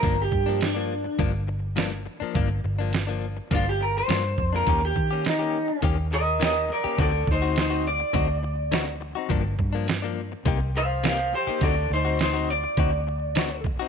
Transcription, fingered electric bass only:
X:1
M:4/4
L:1/16
Q:1/4=104
K:Gm
V:1 name="Fingered electric bass" clef=bass
G,,,2 G,,6 G,,,6- G,,, z | G,,,2 G,,,6 G,,,4 G,,2 F,,2 | E,,2 E,6 E,,6- E,, z | D,,2 D,,6 D,,8 |
G,,,2 G,,6 C,,6- C,, z | D,,2 D,,6 D,,8 |]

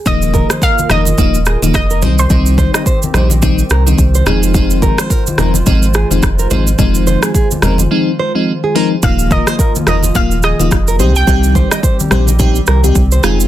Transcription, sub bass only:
X:1
M:4/4
L:1/16
Q:"Swing 16ths" 1/4=107
K:Fm
V:1 name="Sub bass" clef=bass
E,,,3 z3 F,,,2 E,,,3 E,,, F,,,2 C,,2 | C,,3 z3 B,,,4 C,,2 C,,2 F,,,2- | F,,,3 z3 F,,,2 A,,,3 F,,, F,,,2 A,,,2 | F,,,3 z3 F,,,2 z8 |
E,,,3 z3 F,,,2 E,,,3 E,,, F,,,2 C,,2 | C,,3 z3 B,,,4 C,,2 C,,2 F,,,2 |]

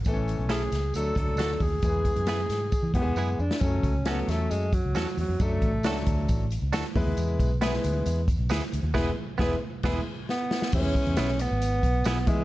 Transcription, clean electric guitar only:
X:1
M:4/4
L:1/16
Q:1/4=135
K:Emix
V:1 name="Clean electric guitar"
z4 [CEA] z6 z [DFA] z3 | z4 [B,EG] z6 z [B,EG] z3 | z4 [CFA] z6 z [CFA] z3 | z4 [DFA] z6 z [DFA] z3 |
z4 [B,EG] z6 z [B,EG] z3 | [B,EG]2 z2 [B,EG]2 z2 [B,EG]2 z6 | z4 [B,EG] z6 z [B,EG] z3 |]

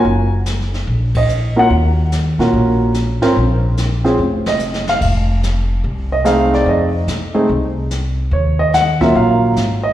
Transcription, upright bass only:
X:1
M:4/4
L:1/8
Q:"Swing" 1/4=145
K:Ebdor
V:1 name="Upright bass" clef=bass
G,,,4 B,,,4 | E,,3 B,, B,,,3 A,,, | B,,,4 F,,,4 | F,,,4 C,,4 |
F,,2 C,2 C,,4 | E,,4 B,,,2 A,,,2 |]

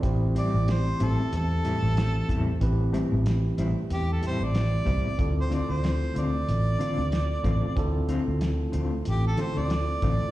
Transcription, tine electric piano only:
X:1
M:4/4
L:1/8
Q:"Swing 16ths" 1/4=93
K:Am
V:1 name="Tine electric piano"
[CEGc]8 | [CEGB]8 | [CEFA]8 | [CEFA]4- [CEFA] [CEFA]3 |]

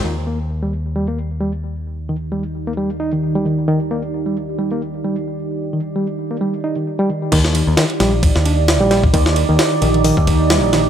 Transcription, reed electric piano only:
X:1
M:4/4
L:1/16
Q:"Swing 16ths" 1/4=132
K:Eb
V:1 name="Reed electric piano" clef=bass
E, z B, z2 G, z2 G, B, z2 G, z3 | z2 E, z G, z2 B, G, z E E,2 G, E,2 | E, z B, z2 G, z2 G, B, z2 G, z3 | z2 E, z G, z2 B, G, z E E,2 G, E,2 |
E, z E,2 E, z G, z3 D z2 G, G, z | E, z2 E,3 E, E, E, z3 G,2 E, z |]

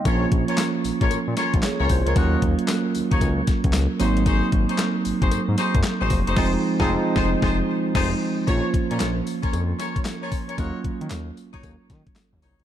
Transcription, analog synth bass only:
X:1
M:4/4
L:1/16
Q:"Swing 16ths" 1/4=114
K:Bbm
V:1 name="Analog synth bass" clef=bass
B,,,2 B,,, z3 B,,, B,,, B,, B,, z B,,, z D,, C,, D,, | E,,2 E,, z3 E,, E,, D,,2 z D,, D,, z A,,,2- | A,,,2 A,,, z3 A,,, A,,, A,, A,, z G,, z A,,, F,,, G,,, | F,,,2 z F,,,2 z F,,,2 F,,,2 z2 F,,,2 z2 |
B,,, z B,, B,, B,,,2 z2 F,,2 z6 | E,, z E, E, E,,2 z2 E,, z E, z2 E,, C,, D,, |]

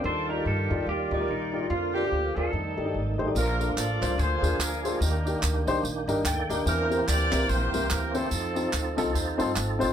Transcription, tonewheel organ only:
X:1
M:4/4
L:1/8
Q:"Swing" 1/4=145
K:Bb
V:1 name="Tonewheel organ"
z8 | z8 | z8 | z6 [Adg] [DG]- |
[DG] z6 z | z8 |]
V:2 name="Tonewheel organ"
[E,G,Fd]8 | [C,D,F,B,F]4 [E,G,A,E]4 | [F,B,_D=DF]4 [F,B,_D=D_A]4 | [E,B,DG]8 |
[=E,B,CG]8 | [F,CEA]8 |]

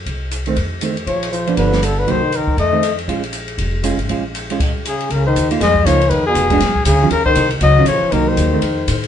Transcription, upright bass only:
X:1
M:4/4
L:1/8
Q:"Swing" 1/4=238
K:Bbm
V:1 name="Upright bass" clef=bass
C,,4 F,,4 | B,,,4 =G,,,4 | C,,3 z F,,4 | B,,,4 F,,,3 A,,, |
B,,,4 z4 | [K:Db] D,,2 E,,2 F,,2 D,,2 | F,,2 F,,,2 B,,,2 =D,,2 | E,,2 C,,2 D,,2 B,,, z |
C,,2 E,,2 F,,2 =A,,2 |]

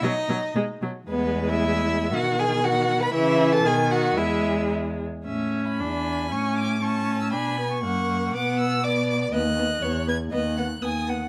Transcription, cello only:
X:1
M:2/4
L:1/8
Q:1/4=118
K:E
V:1 name="Cello" clef=bass
B,, B,, B,, B,, | E,,4 | B,,4 | C,2 B,,2 |
E,,3 z | [K:A] A,,2 E,,2 | A,,4 | B,,2 F,,2 |
B,,4 | [K:Bmix] D,,2 E,,2 | D,,2 D,,2 |]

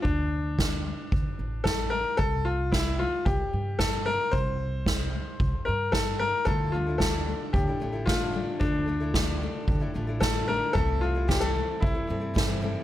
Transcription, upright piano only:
X:1
M:4/4
L:1/16
Q:1/4=112
K:Dm
V:1 name="Upright piano"
D12 A2 B2 | A2 F2 E2 F2 G4 A2 B2 | c8- c2 B2 A2 B2 | A2 F2 A4 G4 F4 |
D12 A2 B2 | A2 F2 G A3 E8 |]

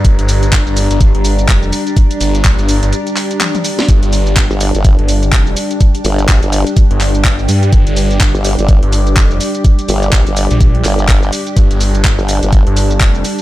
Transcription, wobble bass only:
X:1
M:4/4
L:1/16
Q:"Swing 16ths" 1/4=125
K:Gm
V:1 name="Wobble bass" clef=bass
z16 | z16 | z4 z G,,,2 G,,,2 z6 z | z2 G,,,2 B,,, G,,,2 z8 z |
z4 z G,,,2 G,,,2 z6 z | z2 G,,,2 B,,, G,,,2 z3 G,,,4 z2 | z4 z G,,,2 G,,,2 z6 z |]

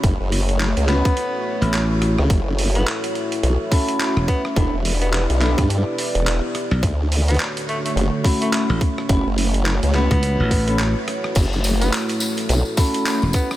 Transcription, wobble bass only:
X:1
M:4/4
L:1/16
Q:"Swing 16ths" 1/4=106
K:F#m
V:1 name="Wobble bass" clef=bass
F,,, F,,,4 C,,2 z8 C,, | F,,,4 z4 B,,, z6 z | E,,, E,,,4 B,,,2 =G,,2 z2 E,,,2 z3 | D,,4 z4 F,,, z6 z |
F,,, F,,,4 C,,2 z8 z | F,,,4 z4 B,,, z6 z |]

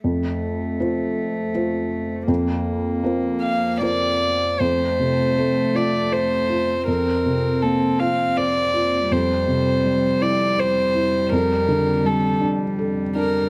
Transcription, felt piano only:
X:1
M:3/4
L:1/8
Q:1/4=80
K:F
V:1 name="Felt piano"
F,,2 [A,Fc]2 [A,Fc]2 | F,,2 [B,Fc]2 [B,Fc]2 | F,, C, A, F c F | F,, C, B, F c F |
F,, C, G, E c E | F,, D, G, D A D |]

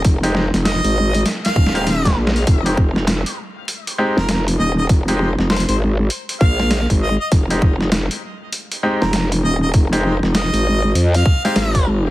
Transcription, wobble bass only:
X:1
M:4/4
L:1/16
Q:"Swing 16ths" 1/4=99
K:Fm
V:1 name="Wobble bass" clef=bass
F,,,3 F,,,2 A,,,3 z2 E,,,4 B,,,2 | F,,,2 F,,,3 z6 F,,,3 E,,,2 | F,,,3 F,,,2 A,,,3 z2 B,,,3 A,,,2 z | F,,,2 F,,,3 z6 F,,,3 E,,,2 |
F,,,3 F,,,2 A,,,3 F,,2 z2 A,,,4 |]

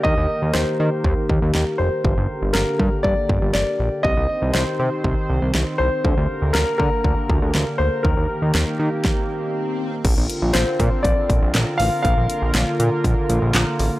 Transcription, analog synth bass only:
X:1
M:4/4
L:1/16
Q:1/4=120
K:Bb
V:1 name="Analog synth bass" clef=bass
E,, E,, z E,, E,, z E, z E,, z E,, E,, E,, z F,,, z | G,,, G,,, z G,,, G,,, z G,, z G,,, z G,,, G,,, G,,, z B,,, z | C,, C,, z C,, C,, z C, z C,, z C,, C,, C,, z C,, z | D,, D,, z D,, D,, z D, z D,, z D,, D,, D,, z D,, z |
E,, E,, z E,, E,, z E, z8 z | B,,, B,,, z B,,, B,,, z B,, z B,,, z B,,, B,,, B,,, z A,,, z | B,,, B,,, z B,,, B,,, z B,, z B,,, z B,,, B,,, B,,, z A,,, z |]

